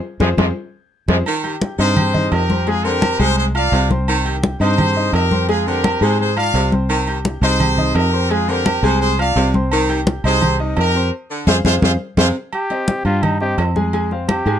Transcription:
0.20 F2 C3 F3 G#3 F4 G#4 C5, high conga, high timbale
0.37 F2 C3 F3 G#3 F4 G#4 C5, high conga, high timbale
1.08 F2 C3 F3 G#3 F4 G#4 C5, high conga, high timbale
1.26 D#3, high conga, low agogo
1.44 G4 G5 G6, high conga, low agogo
1.62 high conga, low timbale
1.79 G2 C3 D#4 G#4 C5 D#5 D#6, low agogo
1.96 G4 G5 G6, high conga, low conga, low agogo
2.14 D#4 D#5 D#6, high conga, low conga
2.32 F2 G4 A#4, high conga, low timbale, low agogo
2.50 C4 C5 C6, high conga
2.67 G#3 F4 G#4 G#5, high conga, low agogo
2.85 D3 C4 G4 A#4 C5 C6, high conga
3.02 high conga, low timbale, low agogo
3.19 C2 C3 G#3 G#4 C5 G#5, high conga, low agogo
3.37 G#4 C5, high conga
3.55 F4 D5 F5 F6, high conga, low agogo
3.72 C2 C3, high conga, low timbale, low agogo
3.90 C4 C5 C6, high conga
4.08 D#3, high conga, low agogo
4.25 G4 G5 G6, high conga, low agogo
4.43 high conga, low timbale
4.60 G2 C3 D#4 G#4 C5 D#5 D#6, low agogo
4.78 G4 G5 G6, high conga, low conga, low agogo
4.96 D#4 D#5 D#6, high conga
5.13 F2 G4 A#4, high conga, low timbale, low agogo
5.31 C4 C5 C6, high conga
5.49 G#3 F4 G#4 G#5, high conga, low agogo
5.66 D3 C4 G4 A#4 C5 C6, high conga
5.84 high conga, low timbale, low agogo
6.01 G#2 C3 G#3 G#4 C5 G#5, high conga, low agogo
6.19 G#4 C5, high conga
6.37 F4 D5 F5 F6, high conga, low agogo
6.54 C2 C3, high conga, low timbale, low agogo
6.72 C4 C5 C6, high conga
6.89 D#3, high conga, low agogo
7.07 G4 G5 G6, high conga, low agogo
7.25 high conga, low timbale
7.41 C2 C3 D#4 G#4 C5 D#5 D#6, low agogo
7.60 G4 G5 G6, high conga, low conga, low agogo
7.78 D#4 D#5 D#6, high conga, low conga
7.95 F2 G4 A#4, high conga, low timbale, low agogo
8.13 C4 C5 C6
8.30 G#3 F4 G#4 G#5, high conga, low agogo
8.48 D3 C4 G4 A#4 C5 C6, high conga
8.66 high conga, low timbale, low agogo
8.83 C2 C3 G#3 G#4 C5 G#5, high conga, low agogo
9.01 G#4 C5, high conga
9.19 F4 D5 F5 F6, high conga, low agogo
9.36 C2 C3, high conga, low timbale, low agogo
9.54 C4 C5 C6, high conga
9.72 D#3, high conga, low agogo
9.89 G4 G5 G6, high conga, low agogo
10.07 high conga, low timbale
10.24 C2 C3 D#4 G#4 C5 D#5 D#6, low agogo
10.42 G4 G5 G6, high conga, low conga, low agogo
10.59 D#4 D#5 D#6, high conga
10.77 F2 G4 A#4, high conga, low timbale, low agogo
10.95 C4 C5 C6
11.29 D3
11.47 F2 F4 G#4 C5 F5, high conga, high timbale
11.64 F2 C3 F4 G#4 C5 F5, high conga, high timbale
11.82 F2 F4 G#4 C5 F5, high conga, high timbale
12.17 F2 C3 F4 G#4 C5 F5, high conga, high timbale
12.53 G4, high conga, low agogo
12.70 C4 C5 D#5, high conga, low agogo
12.88 high conga, low timbale
13.05 G2 G3 F4 G4 G5, low agogo
13.23 D#4, high conga, low conga, low agogo
13.40 C4 G4 C5 D#5, high conga
13.58 F2, high conga, low timbale, low agogo
13.76 G#3 G#4 G#5, high conga
13.93 G#3 G#4 G#5, high conga, low agogo
14.11 C4 C5 F5, high conga
14.28 G4, high conga, low timbale, low agogo
14.46 G#2 G#3 G#4 G#5, high conga, low agogo

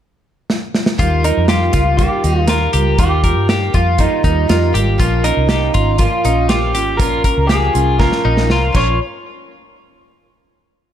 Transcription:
0.50 snare
0.75 snare
0.86 snare
0.98 D#2 D#3 G3 A#3 F4, kick, closed hi-hat
1.23 G3 A#3 D#4 F4 A#4, closed hi-hat
1.37 F2
1.48 D#3 G3 A#3 F4 G4, snare, closed hi-hat
1.72 C#2 G3 A#3 F4, kick, snare, closed hi-hat
1.97 D#3 G3 A#3 F4 G4, kick, closed hi-hat
2.23 D#2 G3 A#3 D#4 F4, closed hi-hat
2.47 D#3 G3 A#3 F4 A#4, snare, closed hi-hat
2.73 C#2 G3 A#3 F4 G4, closed hi-hat
2.98 D#2 D#3 G3 A#3 F4 G4, kick, closed hi-hat
3.23 G3 A#3 F4 A#4, kick, closed hi-hat
3.37 G2
3.48 D#3 G3 A#3 F4 G4, snare, closed hi-hat
3.73 F2 G3 A#3 F4, kick, closed hi-hat
3.98 D#3 G3 A#3 D#4 F4, kick, closed hi-hat
4.23 D#2 G3 A#3 D#4 F4, kick, closed hi-hat
4.47 F2 D#3 G3 A#3 F4, snare, closed hi-hat
4.73 G#1 G3 A#3 F4 G4, closed hi-hat
4.98 A#1 A#2 F3 A#3 C#4 F4, kick, closed hi-hat
5.23 A#3 C#4 D#4 F4 A#4, closed hi-hat
5.37 C2
5.47 F3 A#3 C#4 F4 G4, snare, closed hi-hat
5.73 G#1 A#3 C#4 F4, kick, closed hi-hat
5.98 A#2 F3 A#3 C#4 F4, kick, closed hi-hat
6.24 A#1 A#3 C#4 D#4 F4, closed hi-hat
6.49 F3 A#3 C#4 F4 G4, snare, closed hi-hat
6.73 G#1 A#3 C#4 F4 G4, closed hi-hat
6.97 A#1 A#2 F3 A#3 C#4 F4 A#4, kick, closed hi-hat
7.23 A#3 C#4 F4 A#4, kick, closed hi-hat
7.38 C#2
7.47 F3 A#3 C#4 F4 G4 G#4, snare, closed hi-hat
7.73 C2 A#3 C#4 F4, closed hi-hat
7.99 A#2 F3 A#3 C#4 F4 A#4, kick, snare
8.12 snare
8.23 A#1 A#3 C#4 D#4 F4
8.37 snare
8.49 C2 F3 A#3 C#4 F4, snare
8.72 A#1 A#2 F3 A#3 C#4 F4 C#5, kick, crash
8.77 F4

